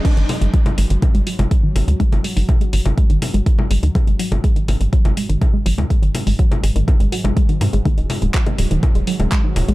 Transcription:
<<
  \new Staff \with { instrumentName = "Synth stab" } { \time 4/4 \key dis \phrygian \tempo 4 = 123 <gis dis' gis'>1 | <gis dis' gis'>1 | <gis dis' gis'>1 | r1 |
<dis ais dis'>1 | }
  \new Staff \with { instrumentName = "Synth arpeggio sound" } { \clef bass \time 4/4 \key dis \phrygian gis16 dis16 r16 gis16 fis16 gis16 gis16 dis16 r16 gis16 fis16 gis16 gis16 dis16 r16 gis16 | fis16 gis16 gis16 dis16 r16 gis16 fis16 gis16 gis16 dis16 r16 gis16 fis16 gis16 gis16 dis16 | r16 gis16 fis16 gis16 gis16 dis16 r16 gis16 fis16 gis16 gis16 dis16 r16 gis16 fis16 gis16 | gis16 dis16 r16 gis16 fis16 gis16 gis16 dis16 r16 gis16 fis16 gis16 gis16 dis16 r16 gis16 |
gis16 dis16 r16 gis16 fis16 gis16 gis16 dis16 r16 gis16 fis16 gis16 gis16 dis16 r16 gis16 | }
  \new Staff \with { instrumentName = "Synth drone" } { \clef bass \time 4/4 \key dis \phrygian <gis, fis>1~ | <gis, fis>1~ | <gis, fis>1~ | <gis, fis>1~ |
<gis, fis>1 | }
  \new Staff \with { instrumentName = "Analog synth bass" } { \clef bass \time 4/4 \key dis \phrygian r16 gis,,16 r16 gis,,16 r8 gis,,16 gis,,16 r16 gis,,16 r16 gis,,16 r8 gis,,16 dis,16 | r16 gis,,16 r16 gis,,16 r8 gis,,16 gis,,16 r16 gis,,16 r16 gis,,16 r8 gis,,16 dis,16 | r16 gis,,16 r16 gis,,16 r8 gis,,16 gis,,16 r16 gis,,16 r16 gis,,16 r8 gis,,16 dis,16 | r16 gis,,16 r16 gis,,16 r8 gis,,16 gis,,16 r16 gis,,16 r16 gis,,16 r8 gis,16 gis,,16 |
r16 dis,,16 r16 dis,,16 r8 dis,,16 dis,,16 r16 dis,,16 r16 dis,,16 r8 dis,,16 ais,,16 | }
  \new DrumStaff \with { instrumentName = "Drums" } \drummode { \time 4/4 <cymc hh bd>16 hh16 <cgl hho>16 hh16 <hh bd>16 <cgl hh>16 hho16 hh16 <cgl hh bd>16 hh16 hho16 <cgl hh>16 <hh bd>8 <cgl hho>16 hh16 | <hh bd>16 <cgl hh>16 hho16 hho16 <cgl hh bd>16 hh16 hho16 <cgl hh>16 <hh bd>16 hh16 <cgl hho>16 hh16 <hh bd>16 cgl16 hho16 hh16 | <cgl hh bd>16 hh16 hho16 <cgl hh>16 <hh bd>16 hh16 <cgl hho>16 hh16 <hh bd>16 <cgl hh>16 hho16 hh16 <cgl hh bd>8 hho16 <cgl hh>16 | <hh bd>16 hh16 <cgl hho>16 hho16 <hh bd>16 <cgl hh>16 hho16 hh16 <cgl hh bd>16 hh16 hho16 <cgl hh>16 <hh bd>16 hh16 <cgl hho>16 hh16 |
<hh bd>16 hh16 <cgl hho>16 hh16 <hc hh bd>16 <cgl hh>16 hho16 hh16 <cgl hh bd>16 hh16 hho16 <cgl hh>16 <hc hh bd>8 <cgl hho>16 hh16 | }
>>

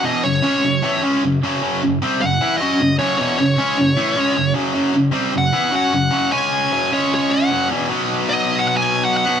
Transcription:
<<
  \new Staff \with { instrumentName = "Lead electric guitar" } { \time 4/4 \key b \major \tempo 4 = 153 dis''8 cis''2 r4. | r4. fis''4 dis''4 cis''8 | cis''8 cis''2. r8 | r4. fis''4 fis''4. |
gis''4. cis''8 cis''8 fis''4 r8 | r4 dis''8. fis''16 fis''16 gis''8. fis''16 fis''8. | }
  \new Staff \with { instrumentName = "Distorted electric guitar" } { \clef bass \time 4/4 \key b \major <e, b, e>8 <fis, cis>8 <cis gis cis'>8 <fis, cis>8 <a, e a>8 <cis gis cis'>8 <fis, cis>8 <fis, cis fis>8 | <fis, cis fis>8 <fis, cis>8 <bis, g bis>8 <fis, cis>8 <e b e'>8 <fis cis' fis'>8 <fis, cis>8 <fis, cis fis>8 | <e, b, e>8 <fis, cis>8 <cis gis cis'>8 <fis, cis>8 <a, e a>8 <cis gis cis'>8 <fis, cis>8 <fis, cis fis>8 | <fis, cis fis>8 <fis, cis>8 <bis, g bis>8 <fis, cis>8 <e b e'>8 <fis cis' fis'>8 <fis, cis>8 <fis, cis fis>8 |
<cis gis cis'>4 <fis, cis fis>8 <cis gis cis'>4. <fis, cis fis>8 <e, b, e>8 | <b, fis b>2.~ <b, fis b>8 <b, fis b>8 | }
>>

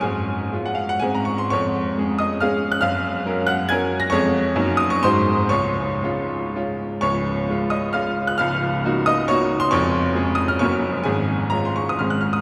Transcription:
<<
  \new Staff \with { instrumentName = "Grand piano" } { \time 3/4 \key des \major \tempo 4 = 131 <aes' aes''>4~ <aes' aes''>16 ges''16 f''16 ges''16 aes''16 bes''16 des'''16 c'''16 | <des'' des'''>4. <ees'' ees'''>8 <f'' f'''>8. ges'''16 | <f'' f'''>4. <ges'' ges'''>8 <aes'' aes'''>8. bes'''16 | <des'' des'''>4. ees'''16 des'''16 <c'' c'''>4 |
<des'' des'''>2 r4 | <des'' des'''>4. <ees'' ees'''>8 <f'' f'''>8. ges'''16 | <f'' f'''>4. <ees'' ees'''>8 <des'' des'''>8. c'''16 | <des'' des'''>4. ees'''16 f'''16 <des'' des'''>4 |
<aes' aes''>4 bes''16 c'''16 des'''16 ees'''16 f'''16 ges'''16 f'''16 ees'''16 | }
  \new Staff \with { instrumentName = "Grand piano" } { \time 3/4 \key des \major aes,4 <aes des' f'>4 <aes, aes c' aes'>4 | f,4 <aes des' aes'>4 <aes des' aes'>4 | ges,4 <ges des' bes'>4 <ges des' bes'>4 | <f, aes des' aes'>4 <ges, bes ees' ges'>4 <aes, aes ees' ges'>4 |
des,4 <aes des' f'>4 <aes des' f'>4 | <des,, des,>4 <aes des' f'>4 <aes des' f'>4 | <des,, des,>4 <bes ees' ges'>4 <bes ees' ges'>4 | <f,, f,>4 <aes des' aes'>4 <ges,, ges, bes des' ges'>4 |
<aes,, aes,>4 <aes des' f'>4 <aes,, aes, aes c' aes'>4 | }
>>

